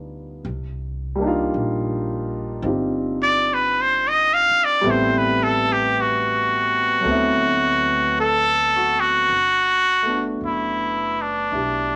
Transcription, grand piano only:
Already playing: G3 B3 D4 D#4 F4
1.15 G3 A#3
1.21 D4 D#4
1.27 F4
2.63 C4 D#4 F4 G4
4.81 G3 A3 B3
4.85 C4 E4
7.00 F#3 A3
7.06 B3 C4
7.11 E4
8.19 A4
8.76 F#4
10.02 A3 B3
10.09 D4
10.14 F#4
11.52 D4 E4 G4

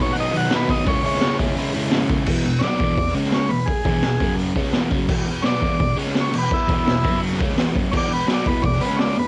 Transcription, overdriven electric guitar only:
Already playing: F#3 B3 D#4
0.00 B2 D#3
0.15 D#3 F#3 B3 D#4
0.32 B2 D#3 F#3 B3 D#4
0.49 D#3 F#3 B3 D#4
0.67 F#3 B3 D#4
0.85 C#3 G#3 C#4 E4
1.03 G#3 C#4 E4
1.20 C#3 G#3 C#4 E4
1.39 C#3 G#3 C#4 E4
1.55 C#3 G#3 C#4 E4
1.73 C#3 G#3 C#4 E4
1.91 C#3 G#3 C#4 E4
2.09 G#3 C#4 E4
2.29 E2 B2 E3
2.45 E2 B2
2.62 B2 F#3 B3
2.79 E2 B2 E3
2.98 E2 B2
3.14 C#3 G#3 C#4
3.49 E2 B2
3.85 E2 B2 E3
4.03 E2 B2
4.20 F#2 C#3 F#3
4.55 C#3 G#3 C#4
4.74 E2 B2 E3
4.91 F#2 C#3 F#3
5.08 E2 B2 E3
5.26 E2 B2
5.43 B2 F#3 B3
5.61 E2 B2 E3
5.80 E2 B2
5.96 C#3 G#3 C#4
6.32 E2 B2
6.68 E2 B2 E3
6.86 E2 B2
7.03 F#2 C#3 F#3
7.39 C#3 G#3 C#4
7.55 E2 B2 E3
7.73 F#2 C#3 F#3
7.91 E2 B2 E3
8.09 E2 B2
8.27 B2 F#3 B3
8.45 E2 B2 E3
8.63 E2 B2
8.80 C#3 G#3 C#4
9.17 E2 B2

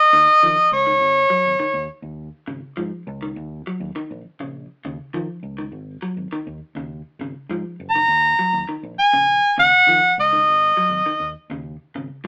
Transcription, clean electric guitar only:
0.13 D#3
0.43 F3
0.87 D#3
1.30 F#3
1.60 D#3
2.47 C#3
2.77 F3
3.22 D#3
3.67 F#3
3.96 D#3
4.40 C#3
4.85 C#3
5.14 F3
5.58 D#3
6.02 F#3
6.32 D#3
6.77 C#3
7.21 C#3
7.51 F3
7.95 D#3
8.39 F#3
8.69 D#3
9.13 C#3
9.58 C#3
9.88 F3
10.33 D#3
10.77 F#3
11.06 D#3
11.51 C#3
11.96 C#3

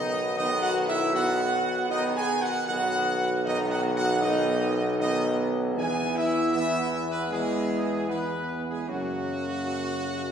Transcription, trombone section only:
Already playing: D#3 B3
0.37 D#3 B3
1.14 D#3 B3
1.91 D#3 B3
2.69 D#3 B3
3.45 D#3 B3
4.23 D#3 B3
5.00 D#3 B3
5.76 E3 B3
6.53 E3 B3
7.31 E3 B3
8.09 E3 B3
8.88 C#3 A#3

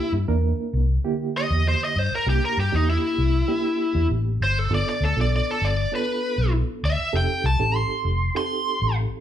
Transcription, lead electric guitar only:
Already playing: E4
1.37 D#5
1.68 C5
1.84 D#5
1.99 C5
2.15 A#4
2.30 G4
2.45 A#4
2.60 G4
2.76 D#4
2.90 E4
4.43 C5
4.59 A4
4.74 D5
4.89 D5
5.05 A4
5.21 D5
5.36 D5
5.51 A4
5.65 D5
5.95 B4
6.85 E5
7.16 G5
7.46 A5
7.75 C6
8.37 C6

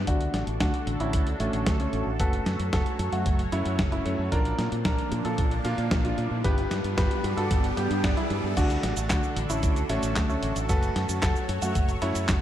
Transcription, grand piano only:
0.07 D4 F#4
0.60 D4 F#4
1.00 C#4 E4
1.40 A3 C#4
1.80 A3 C#4
2.20 F#4 A4
2.73 F#4 A4
3.13 A3 F#4
3.52 C#4 E4
3.92 C#4 E4
4.32 D4 A#4
4.85 D4 A#4
5.25 F4 A4
5.65 D4 F4
6.04 D4 F4
6.44 G4 B4
6.97 G4 B4
7.37 F#4 A4
7.77 B3 G4
8.17 G3 E4
8.57 D4 F#4
9.10 D4 F#4
9.50 C#4 E4
9.89 A3 C#4
10.29 A3 C#4
10.69 F#4 A4
11.22 F#4 A4
11.62 A3 F#4
12.02 C#4 E4

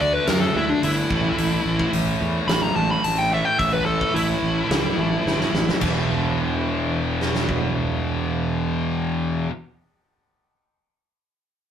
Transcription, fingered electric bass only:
0.01 D2
0.28 F#2
0.55 D2
0.83 G1
1.10 A1
1.38 A1
1.65 A1
1.93 A1
2.21 E2
2.47 A1
2.76 A1
3.04 A1
3.59 A1
4.14 A1
4.42 A1
4.69 C#2
4.97 A1
5.26 G1
5.53 A1
5.81 E1

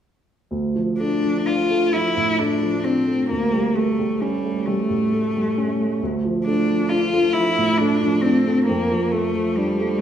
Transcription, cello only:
0.99 D4
1.47 F4
1.93 E4
2.39 D4
2.84 C4
3.30 A#3
3.76 A3
4.21 G3
4.66 A3
6.45 D4
6.89 F4
7.33 E4
7.78 D4
8.21 C4
8.66 A#3
9.11 A3
9.56 G3

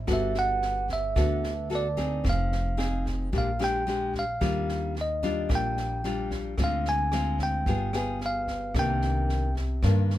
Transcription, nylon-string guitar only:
0.07 G3 B3 F#4 A4
1.16 D3 B3 F#4 A4
1.70 B3 F#4 A4
1.97 C4 D#4 G#4
2.24 F3
2.77 C4 D#4 G#4
3.33 A#2 G#3 D4 G4
3.59 G#3 D4 G4
3.87 G#3 D4 G4
4.41 D#3 G3 D4 F4
5.23 G3 D4 F4
5.49 A#2
6.04 G3 D4 F4
6.58 D3 G#3 C4 F4
7.13 G#3 C4 F4
7.67 G3 B3 F4 G#4
7.94 B3 F4 G#4
8.75 C3 D#3 A#3 D4
9.83 G2 D#3 A#3 D4

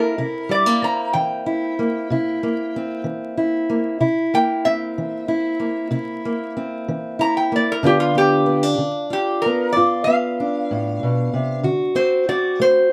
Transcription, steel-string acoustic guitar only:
Already playing: A#3 C4 E4
0.18 C3 E4
0.49 G3
0.66 A#3
0.82 C4
1.14 E3
1.46 E4
1.79 A#3
2.10 C3 E4
2.43 A#3
2.76 C4
3.04 E3
3.38 E4
3.69 A#3
4.00 C3 E4
4.34 A#3
4.66 C4
4.98 E3
5.28 E4
5.60 A#3
5.91 C3 E4
6.25 A#3
6.57 C4
6.88 E3
7.19 E4
7.52 A#3
7.83 G2 D3 B3 D4 F4
8.15 B3
8.46 B3
8.63 D4
8.78 D3
9.10 F4
9.46 B3
9.76 G2 F4
10.07 B3
10.40 D4
10.71 A2
11.03 B2
11.33 C3
11.63 D3 F#4
11.95 C4
12.29 F#4
12.60 A3

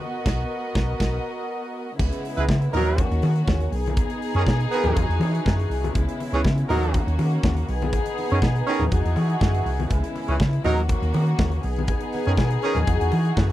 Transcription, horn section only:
2.37 G#3 E4 B4
2.73 F#3 D#4 A#4
4.35 D#3 C#4 G#4
4.71 D#3 B3 G#4
6.33 E3 C#4 G#4
6.69 F#3 D#4 A#4
8.31 D#3 C#4 G#4
8.67 D#3 C#4 G#4
10.28 E3 C#4 G#4
10.65 F#3 D#4 A#4
12.26 D#3 C#4 G#4
12.63 D#3 C#4 G#4

